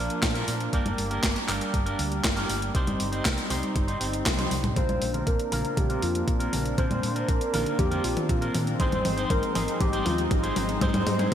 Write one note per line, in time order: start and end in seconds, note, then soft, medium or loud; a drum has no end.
0.00 0.32 A#2 medium
0.00 0.71 F3 medium
0.00 0.32 A#3 medium
0.00 2.71 A#3 medium
0.00 0.32 D4 medium
0.00 2.71 D4 medium
0.00 0.32 F4 medium
0.00 0.32 A#4 medium
0.10 closed hi-hat soft
0.23 0.42 A#2 loud
0.23 kick loud
0.23 snare loud
0.23 clap medium
0.23 closed hi-hat medium
0.34 0.70 A#2 medium
0.34 0.70 A#3 medium
0.34 0.70 D4 medium
0.34 0.70 F4 medium
0.34 0.70 A#4 loud
0.34 closed hi-hat soft
0.48 0.67 A#2 medium
0.48 open hi-hat loud
0.61 closed hi-hat soft
0.72 0.83 G1 loud
0.72 1.08 G2 medium
0.72 4.72 G3 medium
0.72 1.08 A#3 medium
0.72 1.08 D4 medium
0.72 1.08 G4 medium
0.72 1.08 A#4 medium
0.72 kick loud
0.72 closed hi-hat medium
0.86 0.95 G1 medium
0.86 closed hi-hat soft
0.86 high conga medium
0.98 1.18 G1 medium
0.98 open hi-hat loud
1.10 1.26 G2 medium
1.10 1.26 A#3 medium
1.10 1.26 D4 medium
1.10 1.26 G4 medium
1.10 1.26 A#4 medium
1.10 closed hi-hat soft
1.23 1.33 G1 medium
1.23 kick loud
1.23 snare loud
1.23 clap medium
1.23 closed hi-hat medium
1.36 closed hi-hat soft
1.48 1.58 G1 loud
1.48 1.84 G2 medium
1.48 1.83 A#3 medium
1.48 1.83 D4 medium
1.48 1.84 G4 medium
1.48 1.83 A#4 medium
1.48 clap medium
1.48 open hi-hat loud
1.61 closed hi-hat soft
1.74 1.93 G1 medium
1.74 kick loud
1.74 closed hi-hat medium
1.86 2.34 G2 medium
1.86 2.34 A#3 medium
1.86 2.34 D4 medium
1.86 2.34 G4 medium
1.86 2.34 A#4 medium
1.86 closed hi-hat soft
1.99 2.19 D2 loud
1.99 open hi-hat loud
2.12 closed hi-hat soft
2.24 2.44 G1 medium
2.24 kick loud
2.24 snare loud
2.24 clap medium
2.24 closed hi-hat medium
2.36 2.72 G2 medium
2.36 2.72 A#3 medium
2.36 2.72 D4 medium
2.36 2.72 G4 medium
2.36 2.72 A#4 medium
2.36 closed hi-hat soft
2.50 2.69 G1 loud
2.50 open hi-hat loud
2.62 closed hi-hat soft
2.74 2.85 C2 medium
2.74 3.10 C3 medium
2.74 3.10 C4 medium
2.74 4.75 C4 medium
2.74 4.74 D#4 medium
2.74 3.10 D#4 medium
2.74 3.10 G4 medium
2.74 3.10 C5 medium
2.74 kick loud
2.74 closed hi-hat medium
2.87 2.97 G1 loud
2.87 closed hi-hat soft
2.87 high conga medium
3.00 3.19 G1 medium
3.00 open hi-hat loud
3.12 3.28 C3 medium
3.12 3.28 C4 medium
3.12 3.28 D#4 medium
3.12 3.28 G4 medium
3.12 3.28 C5 medium
3.12 closed hi-hat soft
3.25 3.35 C2 medium
3.25 kick loud
3.25 snare loud
3.25 clap medium
3.25 closed hi-hat medium
3.38 closed hi-hat soft
3.50 3.60 C2 medium
3.50 3.85 C3 medium
3.50 3.85 C4 medium
3.50 3.85 D#4 medium
3.50 3.85 G4 medium
3.50 3.85 C5 loud
3.50 open hi-hat loud
3.50 high conga medium
3.63 closed hi-hat soft
3.76 3.95 G1 loud
3.76 kick loud
3.76 closed hi-hat medium
3.88 3.98 C3 medium
3.88 3.98 C4 medium
3.88 3.98 D#4 medium
3.88 3.98 G4 medium
3.88 3.98 C5 medium
3.88 closed hi-hat soft
4.00 4.20 G1 medium
4.00 4.16 C3 medium
4.00 4.16 C4 medium
4.00 4.16 D#4 medium
4.00 4.16 G4 medium
4.00 4.16 C5 medium
4.00 open hi-hat loud
4.13 closed hi-hat soft
4.26 4.46 C2 medium
4.26 kick loud
4.26 snare loud
4.26 clap medium
4.26 closed hi-hat medium
4.26 high tom medium
4.38 4.73 C3 medium
4.38 4.73 C4 medium
4.38 4.73 D#4 medium
4.38 4.73 G4 medium
4.38 4.73 C5 medium
4.38 closed hi-hat soft
4.38 high tom medium
4.51 4.71 C2 medium
4.51 open hi-hat loud
4.51 high conga medium
4.64 closed hi-hat soft
4.64 mid tom medium
4.64 high conga medium
4.76 4.86 A#1 medium
4.76 5.11 A#2 medium
4.76 8.76 A#3 medium
4.76 5.11 C4 medium
4.76 11.34 C4 medium
4.76 8.76 D4 loud
4.76 5.11 D4 medium
4.76 5.11 F4 medium
4.76 5.11 A#4 medium
4.76 5.23 C5 loud
4.76 kick loud
4.76 closed hi-hat medium
4.76 mid tom soft
4.89 4.99 A#1 medium
4.89 closed hi-hat soft
4.89 high conga medium
5.02 5.21 A#1 medium
5.02 open hi-hat loud
5.14 5.29 A#2 medium
5.14 5.29 C4 medium
5.14 5.29 D4 medium
5.14 5.29 F4 medium
5.14 5.29 A#4 medium
5.14 closed hi-hat soft
5.14 mid tom soft
5.27 5.37 A#1 medium
5.27 5.79 A#4 loud
5.27 kick loud
5.27 closed hi-hat medium
5.40 closed hi-hat soft
5.52 5.62 A#1 loud
5.52 5.87 A#2 medium
5.52 5.87 C4 medium
5.52 5.87 D4 medium
5.52 5.87 F4 medium
5.52 5.87 A#4 loud
5.52 open hi-hat loud
5.52 mid tom soft
5.65 closed hi-hat soft
5.77 5.97 A#1 medium
5.77 6.04 G4 loud
5.77 kick loud
5.77 closed hi-hat medium
5.77 mid tom medium
5.89 6.37 A#2 medium
5.89 6.37 C4 medium
5.89 6.37 D4 medium
5.89 6.37 F4 medium
5.89 6.37 A#4 medium
5.89 closed hi-hat soft
6.02 6.22 F2 loud
6.02 6.53 F4 medium
6.02 open hi-hat loud
6.15 closed hi-hat soft
6.28 6.47 A#1 medium
6.28 kick loud
6.28 closed hi-hat medium
6.40 6.75 A#2 medium
6.40 6.75 C4 medium
6.40 6.75 D4 medium
6.40 6.75 F4 medium
6.40 6.75 A#4 loud
6.40 closed hi-hat soft
6.53 6.72 A#1 loud
6.53 open hi-hat loud
6.53 mid tom medium
6.66 closed hi-hat soft
6.78 7.13 A#2 loud
6.78 6.88 A#2 medium
6.78 7.13 C4 medium
6.78 7.13 D4 medium
6.78 7.13 F4 medium
6.78 7.13 A#4 medium
6.78 7.30 C5 loud
6.78 kick loud
6.78 closed hi-hat medium
6.78 mid tom medium
6.91 7.00 A#2 loud
6.91 closed hi-hat soft
6.91 high conga medium
7.03 7.23 A#2 medium
7.03 open hi-hat loud
7.16 7.31 A#2 medium
7.16 7.31 C4 medium
7.16 7.31 D4 medium
7.16 7.31 F4 medium
7.16 7.31 A#4 medium
7.16 closed hi-hat soft
7.29 7.38 A#1 medium
7.29 7.78 A#4 loud
7.29 kick loud
7.29 closed hi-hat medium
7.41 closed hi-hat soft
7.53 7.63 A#1 medium
7.53 7.89 A#2 medium
7.53 7.89 C4 medium
7.53 7.89 D4 medium
7.53 7.89 F4 medium
7.53 7.89 A#4 loud
7.53 open hi-hat loud
7.53 mid tom medium
7.66 closed hi-hat soft
7.79 7.98 F2 medium
7.79 8.06 G4 loud
7.79 kick loud
7.79 closed hi-hat medium
7.79 mid tom medium
7.91 8.39 A#2 medium
7.91 8.39 C4 medium
7.91 8.39 D4 medium
7.91 8.39 F4 medium
7.91 8.39 A#4 loud
7.91 closed hi-hat soft
8.04 8.14 A#1 loud
8.04 8.55 F4 medium
8.04 open hi-hat loud
8.17 closed hi-hat soft
8.17 mid tom medium
8.29 8.49 A#2 loud
8.29 kick loud
8.29 closed hi-hat medium
8.41 8.77 A#2 medium
8.41 8.77 C4 medium
8.41 8.77 D4 medium
8.41 8.77 F4 medium
8.41 8.77 A#4 medium
8.41 closed hi-hat soft
8.55 8.74 A#2 medium
8.55 open hi-hat loud
8.55 mid tom medium
8.67 closed hi-hat soft
8.79 8.90 G#1 medium
8.79 9.15 G#2 medium
8.79 11.34 G#3 medium
8.79 9.15 C4 medium
8.79 11.34 D#4 loud
8.79 9.15 D#4 medium
8.79 9.15 G#4 medium
8.79 9.32 C5 loud
8.79 9.15 C5 medium
8.79 kick loud
8.79 closed hi-hat medium
8.79 mid tom medium
8.92 9.02 G#1 medium
8.92 closed hi-hat soft
8.92 high conga medium
9.05 9.25 G#1 medium
9.05 open hi-hat loud
9.05 mid tom medium
9.17 9.33 G#2 medium
9.17 9.33 C4 medium
9.17 9.33 D#4 medium
9.17 9.33 G#4 medium
9.17 9.33 C5 loud
9.17 closed hi-hat soft
9.30 9.40 G#1 medium
9.30 9.80 A#4 loud
9.30 kick loud
9.30 closed hi-hat medium
9.30 mid tom medium
9.43 closed hi-hat soft
9.55 9.65 G#1 loud
9.55 9.90 G#2 medium
9.55 9.90 C4 medium
9.55 9.90 D#4 medium
9.55 9.90 G#4 medium
9.55 9.90 C5 medium
9.55 open hi-hat loud
9.55 mid tom medium
9.68 closed hi-hat soft
9.81 10.00 G#1 medium
9.81 10.07 G4 loud
9.81 kick loud
9.81 closed hi-hat medium
9.81 mid tom medium
9.93 10.41 G#2 medium
9.93 10.41 C4 medium
9.93 10.41 D#4 medium
9.93 10.41 G#4 medium
9.93 10.41 C5 loud
9.93 closed hi-hat soft
10.06 10.25 D#2 loud
10.06 10.56 F4 medium
10.06 open hi-hat medium
10.06 mid tom medium
10.18 closed hi-hat soft
10.31 10.51 G#1 loud
10.31 kick loud
10.31 closed hi-hat medium
10.31 mid tom medium
10.43 10.78 G#2 medium
10.43 10.78 C4 medium
10.43 10.78 D#4 medium
10.43 10.78 G#4 medium
10.43 10.78 C5 medium
10.43 closed hi-hat soft
10.56 10.76 G#1 loud
10.56 open hi-hat loud
10.56 mid tom medium
10.69 closed hi-hat soft
10.81 11.16 G#2 medium
10.81 10.91 G#2 loud
10.81 11.16 C4 medium
10.81 11.16 D#4 medium
10.81 11.16 G#4 medium
10.81 11.34 C5 loud
10.81 11.16 C5 loud
10.81 kick loud
10.81 closed hi-hat medium
10.81 mid tom medium
10.94 11.04 G#2 loud
10.94 closed hi-hat soft
10.94 mid tom medium
10.94 high conga medium
11.07 11.26 G#2 medium
11.07 open hi-hat loud
11.07 mid tom medium
11.19 11.34 G#2 medium
11.19 11.34 C4 medium
11.19 11.34 D#4 medium
11.19 11.34 G#4 medium
11.19 11.34 C5 loud
11.19 closed hi-hat soft
11.19 mid tom medium